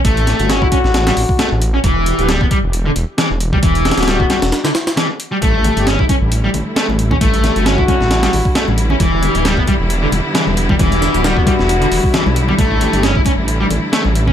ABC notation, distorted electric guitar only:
X:1
M:4/4
L:1/16
Q:"Swing 16ths" 1/4=134
K:Edor
V:1 name="Distorted electric guitar" clef=bass
A,4 C E C z2 G, z2 A, z2 C | E,4 G, B, G, z2 D, z2 E, z2 G, | E,4 G, B, G, z2 D, z2 E, z2 G, | A,4 C E C z2 G, z2 A, z2 C |
A,4 C E C z2 G, z2 A, z2 C | E,4 G, B, G, z2 D, z2 E, z2 G, | E,4 G, B, G, z2 D, z2 E, z2 G, | A,4 C E C z2 G, z2 A, z2 C |]